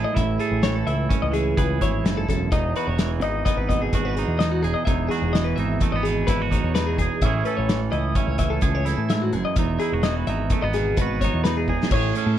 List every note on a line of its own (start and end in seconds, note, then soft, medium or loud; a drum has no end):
0.00 0.12 A2 medium
0.00 0.63 E3 medium
0.00 0.15 C#4 medium
0.00 0.14 E4 medium
0.00 0.16 G#4 medium
0.04 0.16 D#5 medium
0.13 0.37 A1 medium
0.13 2.03 A2 medium
0.13 0.86 E4 medium
0.13 0.40 E5 medium
0.13 kick loud
0.13 closed hi-hat medium
0.39 0.63 G#4 medium
0.39 1.57 A4 medium
0.39 closed hi-hat medium
0.51 0.82 A1 medium
0.63 1.31 E3 medium
0.63 0.75 C#5 medium
0.63 snare loud
0.63 closed hi-hat medium
0.76 0.87 A4 medium
0.87 1.07 C#2 medium
0.87 1.81 E4 medium
0.87 1.10 E5 medium
0.87 closed hi-hat medium
1.09 2.48 C#4 medium
1.09 kick loud
1.09 closed hi-hat medium
1.22 1.53 C#2 medium
1.22 1.34 D#5 medium
1.31 2.56 E3 medium
1.31 1.57 G#4 medium
1.31 closed hi-hat medium
1.57 1.78 C#2 medium
1.57 2.76 G#4 medium
1.57 1.81 B4 medium
1.57 kick loud
1.57 closed hi-hat medium
1.81 2.02 G#1 medium
1.81 2.52 E4 medium
1.81 2.05 C#5 medium
1.81 kick medium
1.81 closed hi-hat medium
2.03 2.26 F#1 medium
2.03 2.27 G#2 medium
2.03 2.17 B4 medium
2.03 snare loud
2.03 closed hi-hat medium
2.17 2.28 A4 medium
2.28 2.49 E1 medium
2.28 2.52 F#2 medium
2.28 2.52 A4 medium
2.28 kick medium
2.28 closed hi-hat medium
2.52 2.72 E1 medium
2.52 4.39 E2 medium
2.52 3.24 D#4 medium
2.52 2.75 D#5 medium
2.52 kick loud
2.52 closed hi-hat medium
2.76 3.93 F#4 medium
2.76 2.87 B4 medium
2.76 closed hi-hat medium
2.87 3.18 E1 medium
2.87 3.11 C#5 medium
2.99 5.35 E3 medium
2.99 snare loud
2.99 closed hi-hat medium
3.21 3.42 G#1 medium
3.21 4.17 D#4 medium
3.21 3.44 D#5 medium
3.21 closed hi-hat medium
3.45 4.84 B3 medium
3.45 3.57 D#5 medium
3.45 kick loud
3.45 closed hi-hat medium
3.57 3.88 G#1 medium
3.57 3.69 B4 medium
3.69 4.87 B2 medium
3.69 3.81 D#5 medium
3.69 kick medium
3.69 closed hi-hat medium
3.82 4.05 G#4 medium
3.93 4.24 G#1 medium
3.93 4.64 F#4 medium
3.93 kick loud
3.93 closed hi-hat medium
4.05 4.15 B4 medium
4.15 4.40 D#4 medium
4.15 4.39 G#4 medium
4.15 closed hi-hat medium
4.27 4.65 E2 medium
4.39 4.85 E2 medium
4.39 4.85 D#4 medium
4.39 4.51 D#5 medium
4.39 snare medium
4.39 closed hi-hat medium
4.51 4.63 F#4 medium
4.63 4.73 E1 medium
4.63 4.75 G#4 medium
4.63 5.11 G#4 soft
4.63 closed hi-hat medium
4.74 4.85 D#5 medium
4.85 5.08 E1 medium
4.85 6.75 E2 medium
4.85 5.58 D#4 medium
4.85 5.09 E5 medium
4.85 kick loud
4.85 closed hi-hat medium
5.09 6.28 F#4 medium
5.09 5.33 G#4 medium
5.09 snare soft
5.09 closed hi-hat medium
5.22 5.53 E1 medium
5.33 7.24 E3 medium
5.33 5.45 D#5 medium
5.33 snare loud
5.33 closed hi-hat medium
5.44 5.57 B4 medium
5.56 5.78 G#1 medium
5.56 6.51 D#4 medium
5.56 5.80 E5 medium
5.56 closed hi-hat medium
5.80 5.96 A3 medium
5.80 kick loud
5.80 closed hi-hat medium
5.92 6.23 G#1 medium
5.92 7.23 B3 medium
5.92 6.04 D#5 medium
6.03 6.27 G#4 medium
6.03 closed hi-hat medium
6.07 7.23 B2 medium
6.27 6.59 G#1 loud
6.27 6.42 E4 medium
6.27 6.51 B4 medium
6.27 kick loud
6.27 snare soft
6.27 closed hi-hat medium
6.42 6.99 F#4 medium
6.51 6.75 D#4 medium
6.51 6.75 C#5 medium
6.51 kick medium
6.51 closed hi-hat medium
6.63 7.00 E2 medium
6.75 7.22 E2 medium
6.75 7.20 D#4 soft
6.75 6.87 B4 medium
6.75 snare loud
6.75 closed hi-hat medium
6.87 6.97 G#4 medium
6.98 7.08 E1 medium
6.98 7.22 G#4 medium
6.98 7.26 G#4 medium
6.98 kick medium
6.98 closed hi-hat medium
7.21 7.42 A1 medium
7.21 9.10 A2 medium
7.21 7.68 E3 medium
7.21 8.14 C#4 medium
7.21 7.46 E5 medium
7.21 kick loud
7.21 closed hi-hat medium
7.26 7.92 E4 medium
7.26 7.46 G#4 medium
7.45 8.62 A4 medium
7.45 7.57 B4 medium
7.45 closed hi-hat medium
7.57 7.88 A1 medium
7.57 7.80 C#5 medium
7.69 8.37 E3 medium
7.69 snare loud
7.69 closed hi-hat medium
7.92 8.13 C#2 medium
7.92 8.85 E4 medium
7.92 8.16 D#5 medium
7.92 closed hi-hat medium
8.15 9.54 C#4 medium
8.15 8.27 E5 medium
8.15 kick loud
8.15 closed hi-hat medium
8.27 8.58 C#2 medium
8.27 8.38 C#5 medium
8.38 9.62 E3 medium
8.38 8.51 E5 medium
8.38 kick medium
8.38 closed hi-hat medium
8.50 8.75 A4 medium
8.61 8.93 C#2 loud
8.61 9.81 G#4 medium
8.61 kick loud
8.61 closed hi-hat medium
8.75 8.87 C#5 medium
8.85 9.59 E4 medium
8.85 9.10 A4 medium
8.85 snare soft
8.85 closed hi-hat medium
8.98 9.34 A2 medium
9.10 9.34 G#2 medium
9.10 9.22 E5 medium
9.10 snare loud
9.10 closed hi-hat medium
9.22 9.33 F#4 medium
9.33 9.43 F#1 medium
9.33 9.57 F#2 medium
9.33 9.45 G#4 medium
9.33 closed hi-hat medium
9.45 9.56 D#5 medium
9.56 9.77 E1 medium
9.56 11.44 E2 medium
9.56 10.28 D#4 medium
9.56 9.80 E5 medium
9.56 kick loud
9.56 closed hi-hat medium
9.80 9.93 E4 medium
9.80 10.03 G#4 medium
9.80 closed hi-hat medium
9.93 10.23 E1 medium
9.93 10.98 F#4 soft
10.03 12.37 E3 medium
10.03 10.16 D#5 medium
10.03 snare loud
10.03 closed hi-hat medium
10.16 10.27 B4 medium
10.27 10.48 G#1 medium
10.27 11.22 D#4 medium
10.27 10.51 E5 medium
10.27 closed hi-hat medium
10.50 10.64 A3 medium
10.50 kick loud
10.50 closed hi-hat medium
10.62 10.94 G#1 medium
10.62 11.92 B3 soft
10.62 10.74 D#5 medium
10.73 11.93 B2 medium
10.73 10.98 G#4 medium
10.73 snare soft
10.73 closed hi-hat medium
10.97 11.28 G#1 medium
10.97 11.21 B4 medium
10.97 kick loud
10.97 closed hi-hat medium
11.02 11.69 F#4 medium
11.21 11.45 D#4 medium
11.21 11.44 C#5 medium
11.21 kick medium
11.21 closed hi-hat medium
11.34 11.69 E2 medium
11.44 11.92 E2 medium
11.44 11.90 D#4 soft
11.44 11.56 B4 medium
11.44 snare loud
11.44 closed hi-hat medium
11.57 11.68 G#4 medium
11.68 11.78 E1 medium
11.68 11.92 G#4 medium
11.68 11.89 G#4 soft
11.68 kick medium
11.83 snare medium
11.91 12.12 A1 medium
11.91 12.38 A2 medium
11.91 12.38 G#4 medium
11.91 12.16 C#5 medium
11.91 kick loud
11.91 crash loud
12.15 12.38 C#4 medium
12.15 12.38 A4 medium
12.15 closed hi-hat medium
12.26 12.38 A2 medium